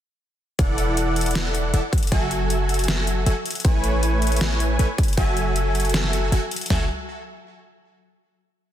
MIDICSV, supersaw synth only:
0, 0, Header, 1, 2, 480
1, 0, Start_track
1, 0, Key_signature, 3, "minor"
1, 0, Tempo, 382166
1, 740, Time_signature, 4, 2, 24, 8
1, 10959, End_track
2, 0, Start_track
2, 0, Title_t, "Supersaw synth"
2, 0, Program_c, 0, 81
2, 739, Note_on_c, 0, 69, 87
2, 740, Note_on_c, 0, 52, 92
2, 740, Note_on_c, 0, 74, 88
2, 740, Note_on_c, 0, 78, 108
2, 741, Note_on_c, 0, 64, 87
2, 2152, Note_off_c, 0, 52, 0
2, 2152, Note_off_c, 0, 69, 0
2, 2152, Note_off_c, 0, 74, 0
2, 2152, Note_off_c, 0, 78, 0
2, 2153, Note_off_c, 0, 64, 0
2, 2180, Note_on_c, 0, 52, 75
2, 2180, Note_on_c, 0, 64, 70
2, 2180, Note_on_c, 0, 74, 69
2, 2180, Note_on_c, 0, 78, 82
2, 2181, Note_on_c, 0, 69, 69
2, 2283, Note_off_c, 0, 52, 0
2, 2283, Note_off_c, 0, 64, 0
2, 2283, Note_off_c, 0, 69, 0
2, 2283, Note_off_c, 0, 74, 0
2, 2283, Note_off_c, 0, 78, 0
2, 2661, Note_on_c, 0, 54, 101
2, 2661, Note_on_c, 0, 76, 92
2, 2662, Note_on_c, 0, 66, 90
2, 2662, Note_on_c, 0, 69, 87
2, 2662, Note_on_c, 0, 80, 105
2, 4073, Note_off_c, 0, 54, 0
2, 4073, Note_off_c, 0, 66, 0
2, 4073, Note_off_c, 0, 69, 0
2, 4073, Note_off_c, 0, 76, 0
2, 4073, Note_off_c, 0, 80, 0
2, 4100, Note_on_c, 0, 76, 69
2, 4101, Note_on_c, 0, 54, 75
2, 4101, Note_on_c, 0, 66, 68
2, 4101, Note_on_c, 0, 69, 69
2, 4101, Note_on_c, 0, 80, 84
2, 4203, Note_off_c, 0, 54, 0
2, 4203, Note_off_c, 0, 66, 0
2, 4203, Note_off_c, 0, 69, 0
2, 4203, Note_off_c, 0, 76, 0
2, 4203, Note_off_c, 0, 80, 0
2, 4580, Note_on_c, 0, 80, 108
2, 4581, Note_on_c, 0, 57, 96
2, 4581, Note_on_c, 0, 64, 89
2, 4581, Note_on_c, 0, 71, 88
2, 4581, Note_on_c, 0, 73, 93
2, 5992, Note_off_c, 0, 64, 0
2, 5992, Note_off_c, 0, 73, 0
2, 5992, Note_off_c, 0, 80, 0
2, 5993, Note_off_c, 0, 57, 0
2, 5993, Note_off_c, 0, 71, 0
2, 6021, Note_on_c, 0, 57, 77
2, 6021, Note_on_c, 0, 64, 68
2, 6021, Note_on_c, 0, 71, 72
2, 6022, Note_on_c, 0, 73, 69
2, 6022, Note_on_c, 0, 80, 83
2, 6123, Note_off_c, 0, 57, 0
2, 6123, Note_off_c, 0, 64, 0
2, 6123, Note_off_c, 0, 71, 0
2, 6123, Note_off_c, 0, 73, 0
2, 6123, Note_off_c, 0, 80, 0
2, 6500, Note_on_c, 0, 69, 86
2, 6500, Note_on_c, 0, 76, 90
2, 6501, Note_on_c, 0, 54, 98
2, 6501, Note_on_c, 0, 66, 90
2, 6501, Note_on_c, 0, 80, 106
2, 7912, Note_off_c, 0, 69, 0
2, 7913, Note_off_c, 0, 54, 0
2, 7913, Note_off_c, 0, 66, 0
2, 7913, Note_off_c, 0, 76, 0
2, 7913, Note_off_c, 0, 80, 0
2, 7940, Note_on_c, 0, 54, 76
2, 7940, Note_on_c, 0, 66, 71
2, 7940, Note_on_c, 0, 80, 82
2, 7941, Note_on_c, 0, 69, 70
2, 7941, Note_on_c, 0, 76, 68
2, 8043, Note_off_c, 0, 54, 0
2, 8043, Note_off_c, 0, 66, 0
2, 8043, Note_off_c, 0, 69, 0
2, 8043, Note_off_c, 0, 76, 0
2, 8043, Note_off_c, 0, 80, 0
2, 8420, Note_on_c, 0, 66, 77
2, 8420, Note_on_c, 0, 69, 75
2, 8420, Note_on_c, 0, 80, 96
2, 8421, Note_on_c, 0, 54, 87
2, 8421, Note_on_c, 0, 76, 78
2, 8600, Note_off_c, 0, 54, 0
2, 8600, Note_off_c, 0, 66, 0
2, 8600, Note_off_c, 0, 69, 0
2, 8600, Note_off_c, 0, 76, 0
2, 8600, Note_off_c, 0, 80, 0
2, 10959, End_track
0, 0, End_of_file